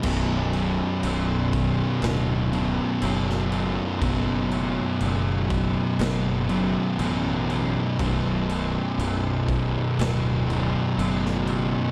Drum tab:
CC |x-x-x-x-x-x-x-x-|x-x-x-x-x-x-x-x-|x-x-x-x-x-x-x-x-|
SD |--------o----o--|--------o-------|--------o----o--|
BD |o-----o---------|o-----o---------|o-----o---------|